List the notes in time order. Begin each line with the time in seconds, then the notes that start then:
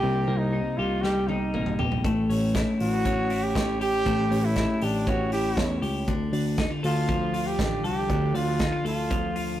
Already playing: G3 A#3 D#4 G4
0.03 C2 C3
0.27 C2 A#3
0.38 D#4
0.53 D#4
0.77 C2 F4 G4
1.02 G3 G4, snare
1.28 D#4, high tom
1.54 A1 A#3, mid tom
1.66 mid tom
1.79 A#1 G4, floor tom
1.92 floor tom
2.04 A1 A3, kick, closed hi-hat
2.29 A1 C#4, open hi-hat
2.55 E4, kick, snare, closed hi-hat
2.80 A1 F#4, open hi-hat
3.05 C#4, kick, closed hi-hat
3.30 E4, open hi-hat
3.43 G4
3.55 C#4, kick, snare, closed hi-hat
3.81 G4, open hi-hat
4.06 A1 A3, kick, closed hi-hat
4.31 A1 C#4, open hi-hat
4.45 E4
4.56 E4, kick, snare, closed hi-hat
4.81 A1 D4 G4, open hi-hat
5.07 C#4 F#4, kick, closed hi-hat
5.32 E4 G4, open hi-hat
5.57 E2 C#4, kick, snare, closed hi-hat
5.82 C#2 G4, open hi-hat
6.07 D2 D3, kick, closed hi-hat
6.33 D2 D4, open hi-hat
6.58 D#4, kick, snare, closed hi-hat
6.71 F4
6.83 D2 F4 A4, open hi-hat
7.08 F3, kick, closed hi-hat
7.34 F4, open hi-hat
7.47 G4
7.59 A1 D4, kick, snare, closed hi-hat
7.84 C2 G4 A4, open hi-hat
8.10 D2 D3, kick, closed hi-hat
8.34 D2 D4 F4, open hi-hat
8.59 D#4, kick, snare, closed hi-hat
8.72 F4
8.84 D2 F4 A4, open hi-hat
9.11 F3, kick, closed hi-hat
9.36 F4, open hi-hat